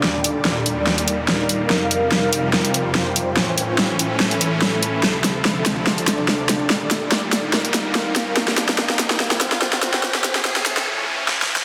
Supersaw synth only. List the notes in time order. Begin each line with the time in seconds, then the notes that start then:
0.04 D#2 A#2 G3
1.70 F2 C3 G3
3.37 A2 E3 C#4
5.03 D2 C3 F3
6.70 D#2 A#2 G3
8.37 F2 C3
10.03 A2 E3 C#4